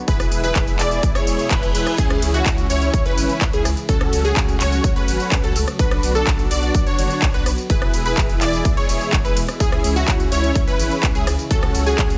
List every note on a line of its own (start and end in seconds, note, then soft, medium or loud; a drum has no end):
0.08 0.27 E1 loud
0.08 1.96 B2 medium
0.08 3.85 E3 medium
0.08 3.85 G#3 medium
0.08 3.85 E4 medium
0.08 0.41 E4 medium
0.08 0.41 G#4 medium
0.08 0.41 B4 medium
0.08 kick loud
0.08 closed hi-hat loud
0.08 tambourine soft
0.20 cross-stick medium
0.20 closed hi-hat soft
0.20 tambourine soft
0.32 0.51 E1 loud
0.32 open hi-hat loud
0.32 tambourine medium
0.44 0.76 E4 medium
0.44 0.76 G#4 medium
0.44 0.76 B4 loud
0.44 closed hi-hat soft
0.44 tambourine soft
0.56 0.75 E1 loud
0.56 kick loud
0.56 clap loud
0.56 closed hi-hat loud
0.56 tambourine soft
0.67 closed hi-hat soft
0.67 tambourine soft
0.79 0.99 E1 loud
0.79 1.12 E4 loud
0.79 1.12 G#4 medium
0.79 1.12 D5 loud
0.79 clap medium
0.79 open hi-hat loud
0.79 tambourine medium
0.91 closed hi-hat soft
0.91 tambourine soft
1.03 1.13 B1 loud
1.03 kick loud
1.03 closed hi-hat loud
1.03 tambourine soft
1.03 reverse cymbal medium
1.15 1.48 E4 medium
1.15 1.48 G#4 medium
1.15 1.48 C#5 loud
1.15 cross-stick medium
1.15 closed hi-hat soft
1.15 tambourine soft
1.27 1.37 E1 medium
1.27 open hi-hat loud
1.27 tambourine medium
1.39 open hi-hat medium
1.39 tambourine soft
1.51 1.60 E1 medium
1.51 1.72 E4 medium
1.51 1.72 B4 medium
1.51 kick loud
1.51 clap loud
1.51 closed hi-hat medium
1.51 tambourine soft
1.63 1.72 E1 medium
1.63 closed hi-hat soft
1.63 tambourine soft
1.75 1.84 E1 loud
1.75 1.96 E4 medium
1.75 1.96 G#4 medium
1.75 1.96 B4 medium
1.75 open hi-hat loud
1.75 tambourine medium
1.87 cross-stick medium
1.87 closed hi-hat soft
1.87 tambourine soft
1.98 2.18 C#2 loud
1.98 5.76 C#3 medium
1.98 2.31 C#4 medium
1.98 2.31 E4 medium
1.98 2.31 G#4 medium
1.98 kick loud
1.98 closed hi-hat loud
1.98 crash medium
1.98 tambourine soft
2.10 cross-stick medium
2.10 closed hi-hat soft
2.22 2.42 C#2 loud
2.22 open hi-hat loud
2.22 ride medium
2.22 tambourine medium
2.34 2.67 C#4 medium
2.34 2.67 E4 medium
2.34 2.67 F#4 loud
2.34 closed hi-hat soft
2.34 tambourine soft
2.46 2.65 C#2 loud
2.46 kick loud
2.46 clap loud
2.46 closed hi-hat medium
2.46 tambourine soft
2.58 closed hi-hat soft
2.58 tambourine soft
2.70 2.89 C#2 medium
2.70 3.03 C#4 loud
2.70 3.03 E4 medium
2.70 3.03 C#5 loud
2.70 open hi-hat loud
2.70 ride medium
2.70 tambourine medium
2.82 closed hi-hat soft
2.82 tambourine soft
2.94 3.03 C#2 loud
2.94 kick loud
2.94 closed hi-hat loud
2.94 tambourine soft
3.06 3.50 C#4 medium
3.06 3.50 E4 medium
3.06 3.50 B4 loud
3.06 closed hi-hat soft
3.17 3.27 G#1 medium
3.17 open hi-hat loud
3.17 ride medium
3.17 tambourine medium
3.29 closed hi-hat soft
3.29 tambourine soft
3.41 3.51 C#2 medium
3.41 kick loud
3.41 clap loud
3.41 closed hi-hat loud
3.41 tambourine soft
3.53 3.63 C#2 medium
3.53 3.66 C#4 medium
3.53 3.66 E4 medium
3.53 3.66 G#4 medium
3.53 closed hi-hat soft
3.53 tambourine soft
3.65 3.75 C#2 loud
3.65 cross-stick medium
3.65 open hi-hat loud
3.65 ride medium
3.65 tambourine medium
3.77 closed hi-hat soft
3.77 tambourine soft
3.89 4.08 C#2 loud
3.89 7.66 F#3 medium
3.89 5.77 A3 medium
3.89 4.22 C#4 medium
3.89 4.22 F#4 medium
3.89 5.77 F#4 medium
3.89 4.22 A4 medium
3.89 kick loud
3.89 closed hi-hat loud
3.89 tambourine soft
4.01 cross-stick medium
4.01 closed hi-hat soft
4.13 4.32 C#2 loud
4.13 open hi-hat loud
4.13 ride medium
4.13 tambourine medium
4.25 4.57 C#4 loud
4.25 4.57 F#4 medium
4.25 4.57 G#4 loud
4.25 4.57 G#4 medium
4.25 closed hi-hat soft
4.25 tambourine soft
4.36 4.56 C#2 loud
4.36 kick loud
4.36 clap loud
4.36 closed hi-hat medium
4.36 tambourine soft
4.49 closed hi-hat soft
4.49 tambourine soft
4.60 4.80 C#2 medium
4.60 4.93 C#4 loud
4.60 4.93 F#4 medium
4.60 4.93 C#5 loud
4.60 clap medium
4.60 open hi-hat loud
4.60 ride medium
4.60 tambourine medium
4.72 closed hi-hat soft
4.72 tambourine soft
4.84 4.94 C#2 loud
4.84 kick loud
4.84 closed hi-hat loud
4.84 tambourine soft
4.96 5.41 C#4 medium
4.96 5.41 F#4 medium
4.96 5.41 B4 loud
4.96 closed hi-hat soft
5.08 5.18 G#1 medium
5.08 open hi-hat loud
5.08 ride medium
5.08 tambourine medium
5.20 closed hi-hat soft
5.20 tambourine soft
5.32 5.41 C#2 medium
5.32 kick loud
5.32 clap loud
5.32 closed hi-hat medium
5.32 tambourine soft
5.44 5.53 C#2 medium
5.44 5.57 C#4 medium
5.44 5.57 F#4 medium
5.44 5.57 A4 medium
5.44 closed hi-hat soft
5.44 tambourine soft
5.56 5.65 C#2 loud
5.56 open hi-hat loud
5.56 ride medium
5.56 tambourine medium
5.68 cross-stick medium
5.68 closed hi-hat soft
5.68 tambourine soft
5.79 5.99 B1 loud
5.79 7.68 D3 medium
5.79 7.68 B3 medium
5.79 6.12 D4 medium
5.79 6.12 F#4 medium
5.79 7.68 F#4 medium
5.79 6.12 B4 medium
5.79 kick loud
5.79 closed hi-hat loud
5.79 tambourine soft
5.91 cross-stick medium
5.91 closed hi-hat soft
6.03 6.23 B1 loud
6.03 open hi-hat loud
6.03 ride medium
6.03 tambourine medium
6.15 6.48 D4 loud
6.15 6.48 F#4 medium
6.15 6.48 A4 loud
6.15 closed hi-hat soft
6.15 tambourine soft
6.27 6.46 B1 loud
6.27 kick loud
6.27 clap loud
6.27 closed hi-hat medium
6.27 tambourine soft
6.39 closed hi-hat soft
6.39 tambourine soft
6.51 6.70 B1 medium
6.51 6.84 D4 loud
6.51 6.84 F#4 medium
6.51 6.84 D5 loud
6.51 open hi-hat loud
6.51 ride medium
6.51 tambourine medium
6.63 closed hi-hat soft
6.63 tambourine soft
6.75 6.84 B1 loud
6.75 kick loud
6.75 closed hi-hat medium
6.75 tambourine soft
6.87 7.31 D4 loud
6.87 7.31 F#4 medium
6.87 7.31 C#5 loud
6.87 closed hi-hat soft
6.98 7.08 F#1 medium
6.98 open hi-hat loud
6.98 ride medium
6.98 tambourine medium
7.10 closed hi-hat soft
7.10 tambourine soft
7.22 7.32 B1 medium
7.22 kick loud
7.22 clap loud
7.22 closed hi-hat medium
7.22 tambourine soft
7.34 7.44 B1 medium
7.34 7.47 D4 medium
7.34 7.47 F#4 medium
7.34 7.47 B4 medium
7.34 closed hi-hat soft
7.34 tambourine soft
7.46 7.56 B1 medium
7.46 cross-stick medium
7.46 open hi-hat loud
7.46 ride medium
7.46 tambourine medium
7.58 closed hi-hat soft
7.58 tambourine soft
7.70 7.89 E1 loud
7.70 9.58 B2 medium
7.70 11.47 E3 medium
7.70 11.47 G#3 medium
7.70 8.03 E4 medium
7.70 11.47 E4 medium
7.70 8.03 G#4 medium
7.70 8.03 B4 medium
7.70 kick loud
7.70 closed hi-hat medium
7.70 tambourine soft
7.82 cross-stick medium
7.82 closed hi-hat soft
7.94 8.13 E1 loud
7.94 open hi-hat loud
7.94 ride medium
7.94 tambourine medium
8.06 8.38 E4 loud
8.06 8.38 G#4 medium
8.06 8.38 B4 loud
8.06 closed hi-hat soft
8.06 tambourine soft
8.17 8.37 E1 loud
8.17 kick loud
8.17 clap loud
8.17 closed hi-hat medium
8.17 tambourine soft
8.29 closed hi-hat soft
8.29 tambourine soft
8.41 8.61 E1 loud
8.41 8.74 E4 medium
8.41 8.74 G#4 medium
8.41 8.74 D5 loud
8.41 clap medium
8.41 open hi-hat loud
8.41 ride medium
8.41 tambourine medium
8.53 closed hi-hat soft
8.53 tambourine soft
8.65 8.75 B1 loud
8.65 kick loud
8.65 closed hi-hat medium
8.65 tambourine soft
8.77 9.22 E4 medium
8.77 9.22 G#4 medium
8.77 9.22 C#5 loud
8.77 closed hi-hat soft
8.89 8.99 E1 medium
8.89 open hi-hat loud
8.89 ride medium
8.89 tambourine medium
9.01 closed hi-hat soft
9.01 tambourine soft
9.13 9.22 E1 medium
9.13 kick loud
9.13 clap loud
9.13 closed hi-hat medium
9.13 tambourine soft
9.25 9.34 E1 medium
9.25 9.38 E4 medium
9.25 9.38 G#4 medium
9.25 9.37 B4 medium
9.25 9.38 B4 medium
9.25 closed hi-hat soft
9.25 tambourine soft
9.37 9.46 E1 loud
9.37 open hi-hat loud
9.37 ride medium
9.37 tambourine medium
9.48 cross-stick medium
9.48 closed hi-hat soft
9.48 tambourine soft
9.60 9.80 C#2 loud
9.60 12.18 C#3 medium
9.60 9.93 C#4 medium
9.60 9.93 E4 medium
9.60 9.93 G#4 medium
9.60 kick loud
9.60 closed hi-hat medium
9.60 tambourine soft
9.72 cross-stick medium
9.72 closed hi-hat soft
9.84 10.04 C#2 loud
9.84 open hi-hat loud
9.84 ride medium
9.84 tambourine medium
9.96 10.29 C#4 medium
9.96 10.29 E4 medium
9.96 10.29 F#4 loud
9.96 closed hi-hat soft
9.96 tambourine soft
10.08 10.27 C#2 loud
10.08 kick loud
10.08 clap loud
10.08 closed hi-hat medium
10.08 tambourine soft
10.20 closed hi-hat soft
10.20 tambourine soft
10.32 10.51 C#2 loud
10.32 10.65 C#4 loud
10.32 10.65 E4 medium
10.32 10.65 C#5 loud
10.32 open hi-hat loud
10.32 ride medium
10.32 tambourine medium
10.44 closed hi-hat soft
10.44 tambourine soft
10.55 10.65 C#2 loud
10.55 kick loud
10.55 closed hi-hat loud
10.55 tambourine soft
10.67 11.12 C#4 medium
10.67 11.12 E4 medium
10.67 11.12 B4 loud
10.67 closed hi-hat soft
10.79 10.89 G#1 medium
10.79 open hi-hat loud
10.79 ride medium
10.79 tambourine medium
10.91 closed hi-hat soft
10.91 tambourine soft
11.03 11.13 C#2 medium
11.03 kick loud
11.03 clap loud
11.03 closed hi-hat medium
11.03 tambourine soft
11.15 11.25 C#2 medium
11.15 11.28 C#4 medium
11.15 11.28 E4 medium
11.15 11.28 G#4 medium
11.15 closed hi-hat soft
11.15 tambourine soft
11.27 11.37 C#2 medium
11.27 cross-stick medium
11.27 open hi-hat loud
11.27 ride medium
11.27 tambourine medium
11.39 closed hi-hat soft
11.39 tambourine soft
11.51 11.70 C#2 loud
11.51 12.18 F#3 medium
11.51 12.18 A3 medium
11.51 11.84 C#4 medium
11.51 11.84 F#4 medium
11.51 12.18 F#4 medium
11.51 11.84 A4 medium
11.51 kick loud
11.51 closed hi-hat loud
11.51 tambourine soft
11.63 cross-stick medium
11.63 closed hi-hat soft
11.75 11.94 C#2 loud
11.75 open hi-hat loud
11.75 ride medium
11.75 tambourine medium
11.86 12.18 C#4 loud
11.86 12.18 F#4 medium
11.86 12.18 G#4 loud
11.86 closed hi-hat soft
11.86 tambourine soft
11.98 12.18 C#2 loud
11.98 kick loud
11.98 clap loud
11.98 closed hi-hat medium
11.98 tambourine soft
12.10 closed hi-hat soft
12.10 tambourine soft